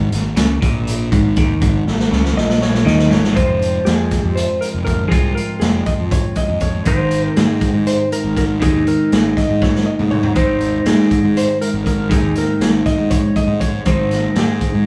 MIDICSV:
0, 0, Header, 1, 5, 480
1, 0, Start_track
1, 0, Tempo, 499584
1, 1557, Time_signature, 7, 3, 24, 8
1, 14278, End_track
2, 0, Start_track
2, 0, Title_t, "Electric slide guitar"
2, 0, Program_c, 0, 29
2, 2281, Note_on_c, 0, 75, 93
2, 2520, Note_on_c, 0, 73, 99
2, 2525, Note_off_c, 0, 75, 0
2, 2752, Note_on_c, 0, 75, 97
2, 2764, Note_off_c, 0, 73, 0
2, 2976, Note_off_c, 0, 75, 0
2, 3003, Note_on_c, 0, 73, 90
2, 3227, Note_off_c, 0, 73, 0
2, 3231, Note_on_c, 0, 72, 96
2, 3700, Note_on_c, 0, 68, 86
2, 3726, Note_off_c, 0, 72, 0
2, 4075, Note_off_c, 0, 68, 0
2, 4075, Note_on_c, 0, 67, 86
2, 4184, Note_on_c, 0, 72, 93
2, 4201, Note_off_c, 0, 67, 0
2, 4428, Note_on_c, 0, 70, 85
2, 4436, Note_off_c, 0, 72, 0
2, 4494, Note_off_c, 0, 70, 0
2, 4656, Note_on_c, 0, 70, 84
2, 4882, Note_off_c, 0, 70, 0
2, 4885, Note_on_c, 0, 68, 84
2, 5122, Note_off_c, 0, 68, 0
2, 5139, Note_on_c, 0, 70, 80
2, 5374, Note_off_c, 0, 70, 0
2, 5378, Note_on_c, 0, 68, 87
2, 5608, Note_off_c, 0, 68, 0
2, 5633, Note_on_c, 0, 75, 95
2, 5698, Note_off_c, 0, 75, 0
2, 5883, Note_on_c, 0, 73, 94
2, 6101, Note_off_c, 0, 73, 0
2, 6120, Note_on_c, 0, 75, 95
2, 6354, Note_on_c, 0, 73, 86
2, 6364, Note_off_c, 0, 75, 0
2, 6577, Note_off_c, 0, 73, 0
2, 6604, Note_on_c, 0, 72, 93
2, 7081, Note_on_c, 0, 68, 86
2, 7092, Note_off_c, 0, 72, 0
2, 7523, Note_off_c, 0, 68, 0
2, 7561, Note_on_c, 0, 72, 92
2, 7780, Note_off_c, 0, 72, 0
2, 7807, Note_on_c, 0, 70, 88
2, 8037, Note_off_c, 0, 70, 0
2, 8048, Note_on_c, 0, 70, 83
2, 8111, Note_off_c, 0, 70, 0
2, 8286, Note_on_c, 0, 68, 84
2, 8503, Note_off_c, 0, 68, 0
2, 8530, Note_on_c, 0, 70, 82
2, 8745, Note_off_c, 0, 70, 0
2, 8769, Note_on_c, 0, 68, 84
2, 9003, Note_on_c, 0, 75, 93
2, 9007, Note_off_c, 0, 68, 0
2, 9245, Note_off_c, 0, 75, 0
2, 9249, Note_on_c, 0, 73, 96
2, 9473, Note_on_c, 0, 75, 95
2, 9487, Note_off_c, 0, 73, 0
2, 9538, Note_off_c, 0, 75, 0
2, 9712, Note_on_c, 0, 73, 86
2, 9935, Note_off_c, 0, 73, 0
2, 9957, Note_on_c, 0, 72, 93
2, 10401, Note_off_c, 0, 72, 0
2, 10441, Note_on_c, 0, 68, 83
2, 10927, Note_on_c, 0, 72, 88
2, 10931, Note_off_c, 0, 68, 0
2, 11155, Note_off_c, 0, 72, 0
2, 11159, Note_on_c, 0, 70, 84
2, 11390, Note_off_c, 0, 70, 0
2, 11402, Note_on_c, 0, 70, 76
2, 11634, Note_off_c, 0, 70, 0
2, 11638, Note_on_c, 0, 68, 85
2, 11883, Note_off_c, 0, 68, 0
2, 11894, Note_on_c, 0, 70, 76
2, 12108, Note_off_c, 0, 70, 0
2, 12120, Note_on_c, 0, 68, 82
2, 12184, Note_off_c, 0, 68, 0
2, 12357, Note_on_c, 0, 75, 88
2, 12591, Note_on_c, 0, 73, 92
2, 12602, Note_off_c, 0, 75, 0
2, 12840, Note_off_c, 0, 73, 0
2, 12840, Note_on_c, 0, 75, 89
2, 13060, Note_off_c, 0, 75, 0
2, 13069, Note_on_c, 0, 73, 85
2, 13319, Note_off_c, 0, 73, 0
2, 13326, Note_on_c, 0, 72, 91
2, 13768, Note_off_c, 0, 72, 0
2, 13821, Note_on_c, 0, 68, 81
2, 14257, Note_off_c, 0, 68, 0
2, 14278, End_track
3, 0, Start_track
3, 0, Title_t, "Clean electric guitar"
3, 0, Program_c, 1, 27
3, 99, Note_on_c, 1, 44, 73
3, 301, Note_off_c, 1, 44, 0
3, 349, Note_on_c, 1, 49, 98
3, 582, Note_off_c, 1, 49, 0
3, 586, Note_on_c, 1, 46, 99
3, 1064, Note_off_c, 1, 46, 0
3, 1068, Note_on_c, 1, 44, 93
3, 1306, Note_off_c, 1, 44, 0
3, 1322, Note_on_c, 1, 51, 102
3, 1548, Note_on_c, 1, 44, 109
3, 1552, Note_off_c, 1, 51, 0
3, 1778, Note_off_c, 1, 44, 0
3, 1789, Note_on_c, 1, 44, 65
3, 1985, Note_off_c, 1, 44, 0
3, 2030, Note_on_c, 1, 49, 93
3, 2274, Note_off_c, 1, 49, 0
3, 2274, Note_on_c, 1, 46, 97
3, 2735, Note_off_c, 1, 46, 0
3, 2739, Note_on_c, 1, 51, 98
3, 2967, Note_on_c, 1, 44, 97
3, 2980, Note_off_c, 1, 51, 0
3, 3190, Note_on_c, 1, 53, 77
3, 3203, Note_on_c, 1, 56, 88
3, 3213, Note_off_c, 1, 44, 0
3, 3216, Note_on_c, 1, 60, 83
3, 3220, Note_on_c, 1, 65, 85
3, 4869, Note_off_c, 1, 53, 0
3, 4880, Note_on_c, 1, 53, 78
3, 4892, Note_off_c, 1, 65, 0
3, 4893, Note_off_c, 1, 56, 0
3, 4897, Note_on_c, 1, 56, 82
3, 4906, Note_off_c, 1, 60, 0
3, 4910, Note_on_c, 1, 60, 83
3, 4914, Note_on_c, 1, 65, 97
3, 6562, Note_off_c, 1, 53, 0
3, 6579, Note_off_c, 1, 65, 0
3, 6587, Note_on_c, 1, 44, 81
3, 6591, Note_on_c, 1, 51, 84
3, 6594, Note_off_c, 1, 56, 0
3, 6598, Note_on_c, 1, 56, 89
3, 6600, Note_off_c, 1, 60, 0
3, 6604, Note_on_c, 1, 60, 90
3, 6619, Note_on_c, 1, 63, 93
3, 8254, Note_off_c, 1, 44, 0
3, 8257, Note_off_c, 1, 51, 0
3, 8258, Note_on_c, 1, 44, 78
3, 8270, Note_on_c, 1, 51, 95
3, 8272, Note_off_c, 1, 56, 0
3, 8276, Note_on_c, 1, 56, 90
3, 8279, Note_off_c, 1, 60, 0
3, 8283, Note_on_c, 1, 60, 89
3, 8285, Note_off_c, 1, 63, 0
3, 8288, Note_on_c, 1, 63, 89
3, 9931, Note_off_c, 1, 44, 0
3, 9933, Note_off_c, 1, 51, 0
3, 9935, Note_on_c, 1, 44, 73
3, 9945, Note_on_c, 1, 51, 87
3, 9947, Note_off_c, 1, 56, 0
3, 9951, Note_on_c, 1, 56, 90
3, 9961, Note_off_c, 1, 60, 0
3, 9965, Note_on_c, 1, 60, 86
3, 9966, Note_off_c, 1, 63, 0
3, 9970, Note_on_c, 1, 63, 88
3, 11610, Note_off_c, 1, 51, 0
3, 11612, Note_off_c, 1, 44, 0
3, 11616, Note_on_c, 1, 44, 86
3, 11622, Note_on_c, 1, 51, 83
3, 11626, Note_off_c, 1, 56, 0
3, 11630, Note_on_c, 1, 56, 92
3, 11637, Note_off_c, 1, 63, 0
3, 11640, Note_off_c, 1, 60, 0
3, 11641, Note_on_c, 1, 63, 86
3, 11644, Note_on_c, 1, 60, 94
3, 13295, Note_off_c, 1, 51, 0
3, 13307, Note_off_c, 1, 44, 0
3, 13311, Note_on_c, 1, 44, 86
3, 13318, Note_off_c, 1, 56, 0
3, 13319, Note_on_c, 1, 51, 84
3, 13322, Note_on_c, 1, 56, 98
3, 13333, Note_off_c, 1, 60, 0
3, 13337, Note_on_c, 1, 60, 94
3, 13344, Note_off_c, 1, 63, 0
3, 13348, Note_on_c, 1, 63, 97
3, 14278, Note_off_c, 1, 44, 0
3, 14278, Note_off_c, 1, 51, 0
3, 14278, Note_off_c, 1, 56, 0
3, 14278, Note_off_c, 1, 60, 0
3, 14278, Note_off_c, 1, 63, 0
3, 14278, End_track
4, 0, Start_track
4, 0, Title_t, "Fingered electric bass"
4, 0, Program_c, 2, 33
4, 0, Note_on_c, 2, 32, 93
4, 105, Note_off_c, 2, 32, 0
4, 124, Note_on_c, 2, 32, 88
4, 345, Note_off_c, 2, 32, 0
4, 349, Note_on_c, 2, 37, 86
4, 577, Note_off_c, 2, 37, 0
4, 597, Note_on_c, 2, 34, 85
4, 1043, Note_off_c, 2, 34, 0
4, 1074, Note_on_c, 2, 32, 97
4, 1299, Note_off_c, 2, 32, 0
4, 1317, Note_on_c, 2, 39, 91
4, 1540, Note_off_c, 2, 39, 0
4, 1560, Note_on_c, 2, 32, 87
4, 1782, Note_off_c, 2, 32, 0
4, 1799, Note_on_c, 2, 32, 77
4, 2021, Note_off_c, 2, 32, 0
4, 2038, Note_on_c, 2, 37, 94
4, 2260, Note_off_c, 2, 37, 0
4, 2276, Note_on_c, 2, 34, 87
4, 2722, Note_off_c, 2, 34, 0
4, 2750, Note_on_c, 2, 39, 92
4, 2975, Note_off_c, 2, 39, 0
4, 2997, Note_on_c, 2, 32, 87
4, 3219, Note_off_c, 2, 32, 0
4, 3237, Note_on_c, 2, 29, 90
4, 3627, Note_off_c, 2, 29, 0
4, 3718, Note_on_c, 2, 41, 81
4, 4010, Note_off_c, 2, 41, 0
4, 4077, Note_on_c, 2, 41, 85
4, 4271, Note_off_c, 2, 41, 0
4, 4556, Note_on_c, 2, 29, 91
4, 4912, Note_off_c, 2, 29, 0
4, 4912, Note_on_c, 2, 36, 88
4, 5108, Note_off_c, 2, 36, 0
4, 5389, Note_on_c, 2, 29, 85
4, 5586, Note_off_c, 2, 29, 0
4, 5754, Note_on_c, 2, 41, 85
4, 5949, Note_off_c, 2, 41, 0
4, 6231, Note_on_c, 2, 41, 79
4, 6526, Note_off_c, 2, 41, 0
4, 6592, Note_on_c, 2, 32, 86
4, 6984, Note_off_c, 2, 32, 0
4, 7082, Note_on_c, 2, 44, 88
4, 7372, Note_off_c, 2, 44, 0
4, 7431, Note_on_c, 2, 44, 81
4, 7627, Note_off_c, 2, 44, 0
4, 7915, Note_on_c, 2, 32, 85
4, 8285, Note_on_c, 2, 39, 86
4, 8300, Note_off_c, 2, 32, 0
4, 8476, Note_off_c, 2, 39, 0
4, 8765, Note_on_c, 2, 32, 85
4, 8956, Note_off_c, 2, 32, 0
4, 9126, Note_on_c, 2, 44, 77
4, 9316, Note_off_c, 2, 44, 0
4, 9605, Note_on_c, 2, 44, 75
4, 9894, Note_off_c, 2, 44, 0
4, 9955, Note_on_c, 2, 32, 89
4, 10345, Note_off_c, 2, 32, 0
4, 10436, Note_on_c, 2, 44, 83
4, 10728, Note_off_c, 2, 44, 0
4, 10804, Note_on_c, 2, 44, 81
4, 10995, Note_off_c, 2, 44, 0
4, 11275, Note_on_c, 2, 32, 90
4, 11637, Note_on_c, 2, 39, 90
4, 11651, Note_off_c, 2, 32, 0
4, 11831, Note_off_c, 2, 39, 0
4, 12105, Note_on_c, 2, 32, 83
4, 12305, Note_off_c, 2, 32, 0
4, 12466, Note_on_c, 2, 44, 80
4, 12665, Note_off_c, 2, 44, 0
4, 12942, Note_on_c, 2, 44, 84
4, 13241, Note_off_c, 2, 44, 0
4, 13318, Note_on_c, 2, 32, 87
4, 13709, Note_off_c, 2, 32, 0
4, 13791, Note_on_c, 2, 44, 85
4, 14087, Note_off_c, 2, 44, 0
4, 14164, Note_on_c, 2, 44, 88
4, 14278, Note_off_c, 2, 44, 0
4, 14278, End_track
5, 0, Start_track
5, 0, Title_t, "Drums"
5, 118, Note_on_c, 9, 42, 68
5, 125, Note_on_c, 9, 38, 34
5, 215, Note_off_c, 9, 42, 0
5, 221, Note_off_c, 9, 38, 0
5, 351, Note_on_c, 9, 42, 92
5, 358, Note_on_c, 9, 38, 111
5, 448, Note_off_c, 9, 42, 0
5, 454, Note_off_c, 9, 38, 0
5, 599, Note_on_c, 9, 36, 103
5, 601, Note_on_c, 9, 42, 63
5, 695, Note_off_c, 9, 36, 0
5, 697, Note_off_c, 9, 42, 0
5, 839, Note_on_c, 9, 42, 91
5, 936, Note_off_c, 9, 42, 0
5, 1077, Note_on_c, 9, 36, 100
5, 1077, Note_on_c, 9, 42, 62
5, 1173, Note_off_c, 9, 36, 0
5, 1173, Note_off_c, 9, 42, 0
5, 1310, Note_on_c, 9, 42, 64
5, 1316, Note_on_c, 9, 36, 100
5, 1316, Note_on_c, 9, 38, 35
5, 1406, Note_off_c, 9, 42, 0
5, 1412, Note_off_c, 9, 36, 0
5, 1412, Note_off_c, 9, 38, 0
5, 1552, Note_on_c, 9, 42, 85
5, 1555, Note_on_c, 9, 36, 100
5, 1648, Note_off_c, 9, 42, 0
5, 1651, Note_off_c, 9, 36, 0
5, 1801, Note_on_c, 9, 38, 58
5, 1897, Note_off_c, 9, 38, 0
5, 1920, Note_on_c, 9, 38, 55
5, 2016, Note_off_c, 9, 38, 0
5, 2041, Note_on_c, 9, 38, 65
5, 2137, Note_off_c, 9, 38, 0
5, 2162, Note_on_c, 9, 38, 57
5, 2258, Note_off_c, 9, 38, 0
5, 2282, Note_on_c, 9, 38, 75
5, 2378, Note_off_c, 9, 38, 0
5, 2400, Note_on_c, 9, 38, 67
5, 2496, Note_off_c, 9, 38, 0
5, 2516, Note_on_c, 9, 38, 80
5, 2612, Note_off_c, 9, 38, 0
5, 2639, Note_on_c, 9, 38, 70
5, 2735, Note_off_c, 9, 38, 0
5, 2757, Note_on_c, 9, 38, 85
5, 2853, Note_off_c, 9, 38, 0
5, 2872, Note_on_c, 9, 38, 82
5, 2968, Note_off_c, 9, 38, 0
5, 2991, Note_on_c, 9, 38, 97
5, 3087, Note_off_c, 9, 38, 0
5, 3115, Note_on_c, 9, 38, 85
5, 3211, Note_off_c, 9, 38, 0
5, 3234, Note_on_c, 9, 36, 105
5, 3235, Note_on_c, 9, 42, 78
5, 3330, Note_off_c, 9, 36, 0
5, 3331, Note_off_c, 9, 42, 0
5, 3481, Note_on_c, 9, 42, 64
5, 3577, Note_off_c, 9, 42, 0
5, 3712, Note_on_c, 9, 42, 78
5, 3719, Note_on_c, 9, 38, 97
5, 3808, Note_off_c, 9, 42, 0
5, 3815, Note_off_c, 9, 38, 0
5, 3951, Note_on_c, 9, 42, 59
5, 3954, Note_on_c, 9, 36, 72
5, 3958, Note_on_c, 9, 38, 31
5, 4047, Note_off_c, 9, 42, 0
5, 4050, Note_off_c, 9, 36, 0
5, 4054, Note_off_c, 9, 38, 0
5, 4201, Note_on_c, 9, 42, 81
5, 4297, Note_off_c, 9, 42, 0
5, 4438, Note_on_c, 9, 42, 57
5, 4534, Note_off_c, 9, 42, 0
5, 4675, Note_on_c, 9, 36, 75
5, 4678, Note_on_c, 9, 42, 58
5, 4771, Note_off_c, 9, 36, 0
5, 4774, Note_off_c, 9, 42, 0
5, 4916, Note_on_c, 9, 36, 98
5, 4917, Note_on_c, 9, 42, 72
5, 5012, Note_off_c, 9, 36, 0
5, 5013, Note_off_c, 9, 42, 0
5, 5163, Note_on_c, 9, 42, 57
5, 5259, Note_off_c, 9, 42, 0
5, 5392, Note_on_c, 9, 42, 71
5, 5399, Note_on_c, 9, 38, 95
5, 5488, Note_off_c, 9, 42, 0
5, 5495, Note_off_c, 9, 38, 0
5, 5631, Note_on_c, 9, 42, 56
5, 5635, Note_on_c, 9, 36, 71
5, 5727, Note_off_c, 9, 42, 0
5, 5732, Note_off_c, 9, 36, 0
5, 5874, Note_on_c, 9, 36, 105
5, 5874, Note_on_c, 9, 42, 78
5, 5970, Note_off_c, 9, 36, 0
5, 5970, Note_off_c, 9, 42, 0
5, 6107, Note_on_c, 9, 42, 59
5, 6112, Note_on_c, 9, 36, 74
5, 6203, Note_off_c, 9, 42, 0
5, 6208, Note_off_c, 9, 36, 0
5, 6345, Note_on_c, 9, 42, 59
5, 6351, Note_on_c, 9, 36, 73
5, 6441, Note_off_c, 9, 42, 0
5, 6447, Note_off_c, 9, 36, 0
5, 6585, Note_on_c, 9, 42, 77
5, 6593, Note_on_c, 9, 36, 97
5, 6681, Note_off_c, 9, 42, 0
5, 6689, Note_off_c, 9, 36, 0
5, 6831, Note_on_c, 9, 42, 66
5, 6927, Note_off_c, 9, 42, 0
5, 7076, Note_on_c, 9, 42, 86
5, 7083, Note_on_c, 9, 38, 103
5, 7172, Note_off_c, 9, 42, 0
5, 7179, Note_off_c, 9, 38, 0
5, 7313, Note_on_c, 9, 42, 62
5, 7315, Note_on_c, 9, 36, 74
5, 7409, Note_off_c, 9, 42, 0
5, 7411, Note_off_c, 9, 36, 0
5, 7559, Note_on_c, 9, 42, 85
5, 7656, Note_off_c, 9, 42, 0
5, 7803, Note_on_c, 9, 42, 64
5, 7899, Note_off_c, 9, 42, 0
5, 8037, Note_on_c, 9, 36, 77
5, 8042, Note_on_c, 9, 42, 62
5, 8048, Note_on_c, 9, 38, 35
5, 8133, Note_off_c, 9, 36, 0
5, 8138, Note_off_c, 9, 42, 0
5, 8144, Note_off_c, 9, 38, 0
5, 8280, Note_on_c, 9, 36, 105
5, 8285, Note_on_c, 9, 42, 81
5, 8376, Note_off_c, 9, 36, 0
5, 8381, Note_off_c, 9, 42, 0
5, 8521, Note_on_c, 9, 42, 59
5, 8617, Note_off_c, 9, 42, 0
5, 8765, Note_on_c, 9, 42, 78
5, 8772, Note_on_c, 9, 38, 95
5, 8861, Note_off_c, 9, 42, 0
5, 8868, Note_off_c, 9, 38, 0
5, 9002, Note_on_c, 9, 36, 74
5, 9011, Note_on_c, 9, 42, 53
5, 9018, Note_on_c, 9, 38, 33
5, 9098, Note_off_c, 9, 36, 0
5, 9107, Note_off_c, 9, 42, 0
5, 9114, Note_off_c, 9, 38, 0
5, 9241, Note_on_c, 9, 36, 97
5, 9252, Note_on_c, 9, 38, 58
5, 9337, Note_off_c, 9, 36, 0
5, 9348, Note_off_c, 9, 38, 0
5, 9372, Note_on_c, 9, 38, 59
5, 9468, Note_off_c, 9, 38, 0
5, 9600, Note_on_c, 9, 47, 70
5, 9696, Note_off_c, 9, 47, 0
5, 9716, Note_on_c, 9, 45, 89
5, 9812, Note_off_c, 9, 45, 0
5, 9831, Note_on_c, 9, 43, 80
5, 9927, Note_off_c, 9, 43, 0
5, 9949, Note_on_c, 9, 42, 74
5, 9954, Note_on_c, 9, 36, 101
5, 10045, Note_off_c, 9, 42, 0
5, 10050, Note_off_c, 9, 36, 0
5, 10191, Note_on_c, 9, 42, 56
5, 10287, Note_off_c, 9, 42, 0
5, 10432, Note_on_c, 9, 42, 78
5, 10439, Note_on_c, 9, 38, 108
5, 10528, Note_off_c, 9, 42, 0
5, 10535, Note_off_c, 9, 38, 0
5, 10675, Note_on_c, 9, 36, 72
5, 10677, Note_on_c, 9, 42, 58
5, 10772, Note_off_c, 9, 36, 0
5, 10773, Note_off_c, 9, 42, 0
5, 10922, Note_on_c, 9, 42, 77
5, 11018, Note_off_c, 9, 42, 0
5, 11160, Note_on_c, 9, 42, 59
5, 11256, Note_off_c, 9, 42, 0
5, 11395, Note_on_c, 9, 36, 77
5, 11401, Note_on_c, 9, 42, 58
5, 11491, Note_off_c, 9, 36, 0
5, 11497, Note_off_c, 9, 42, 0
5, 11634, Note_on_c, 9, 36, 103
5, 11637, Note_on_c, 9, 42, 77
5, 11730, Note_off_c, 9, 36, 0
5, 11733, Note_off_c, 9, 42, 0
5, 11870, Note_on_c, 9, 42, 60
5, 11877, Note_on_c, 9, 38, 33
5, 11967, Note_off_c, 9, 42, 0
5, 11973, Note_off_c, 9, 38, 0
5, 12117, Note_on_c, 9, 42, 78
5, 12124, Note_on_c, 9, 38, 101
5, 12213, Note_off_c, 9, 42, 0
5, 12220, Note_off_c, 9, 38, 0
5, 12355, Note_on_c, 9, 36, 74
5, 12359, Note_on_c, 9, 42, 61
5, 12366, Note_on_c, 9, 38, 34
5, 12451, Note_off_c, 9, 36, 0
5, 12455, Note_off_c, 9, 42, 0
5, 12462, Note_off_c, 9, 38, 0
5, 12593, Note_on_c, 9, 42, 82
5, 12596, Note_on_c, 9, 36, 102
5, 12689, Note_off_c, 9, 42, 0
5, 12692, Note_off_c, 9, 36, 0
5, 12836, Note_on_c, 9, 36, 74
5, 12837, Note_on_c, 9, 42, 58
5, 12932, Note_off_c, 9, 36, 0
5, 12933, Note_off_c, 9, 42, 0
5, 13076, Note_on_c, 9, 42, 60
5, 13077, Note_on_c, 9, 36, 75
5, 13172, Note_off_c, 9, 42, 0
5, 13173, Note_off_c, 9, 36, 0
5, 13312, Note_on_c, 9, 42, 79
5, 13317, Note_on_c, 9, 36, 99
5, 13408, Note_off_c, 9, 42, 0
5, 13413, Note_off_c, 9, 36, 0
5, 13558, Note_on_c, 9, 42, 58
5, 13564, Note_on_c, 9, 38, 33
5, 13654, Note_off_c, 9, 42, 0
5, 13660, Note_off_c, 9, 38, 0
5, 13795, Note_on_c, 9, 42, 69
5, 13801, Note_on_c, 9, 38, 105
5, 13891, Note_off_c, 9, 42, 0
5, 13897, Note_off_c, 9, 38, 0
5, 14037, Note_on_c, 9, 42, 56
5, 14039, Note_on_c, 9, 36, 74
5, 14133, Note_off_c, 9, 42, 0
5, 14135, Note_off_c, 9, 36, 0
5, 14278, End_track
0, 0, End_of_file